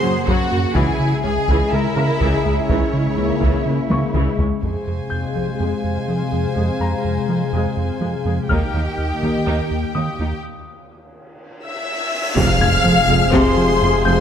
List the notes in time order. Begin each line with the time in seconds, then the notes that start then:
Already playing: C#3 A#3 F#4 G#4 C5 F#5 A#5 C6
0.03 F#2 F#3 C#4
0.27 F#2 C#3 F#3 F#4 F#5, taiko
0.51 F#2 C#3 A#3
0.75 C#2 C#3 E3 G#3 E4 G#4 E5 G#5, taiko
1.00 C#3
1.24 C#2 E3 C#4 G#4 G#5
1.48 C#2 C#3 E3, taiko
1.72 C#2 C#3 G#3 E4 A#4 E5
1.96 C#2 C#3 E3 C#4 A#4 A#5
2.21 C#2 C#3 E3 G#4, taiko
2.45 C#2 C#3 G#3
2.69 C#2 C#3 E3 G#3 C#4 E4 C#5, taiko
2.94 C#3
3.17 C#2 E3 A#3 C#4
3.41 C#2 C#3 E3, taiko
3.66 C#2 C#3 G#3 A#3
3.90 C#2 C#3 E3 C#4 C#6, taiko high
4.14 C#2 C#3 E3 G#3, taiko mid
4.38 C#2 C#3 G#3, taiko low
4.63 F2 C3 G#3 G#4 C5 F5 G#5, taiko
4.87 F2 G#3 G#4
5.10 F2 G6
5.35 F2 F3 G#3 G#4, taiko
5.59 F2 G#3 G#4
5.84 F2
6.08 F2 F3 G#3 G#4
6.32 F2 G#3 G#4
6.56 F2 G#3 G#4
6.80 F2 G#3 G#4 A#5
7.05 F2
7.29 F2 F3 G#3 G#4
7.53 F2 G#3 G#4
7.77 F2
8.01 F2 F3 G#3 G#4
8.25 F2 G#3 G#4
8.49 D#2 D#3 A#3 D#4 G4 D#5 G5 F6, taiko
8.74 D#2 A#3 D#4
8.98 D#2
9.22 D#2 D#3 A#3 D#4, taiko
9.47 D#2 A#3 D#4
9.71 D#2
9.95 D#2 D#3 A#3 D#4 D#6
10.19 D#2 A#3 D#4
10.44 cymbal swell
11.64 E5 E6
12.36 F1 F2 C3 F3 G#3 C4 G#4 F5 F6, taiko, impact
12.60 F1 F2 G#3 G#6
12.84 F1 F2 F3
13.09 F1 F2 G#3
13.33 F1 F2 C3 C5 C6, taiko
13.57 F3
13.81 F1 F2 F3
14.05 F1 F2 G#3 C5 C6 G6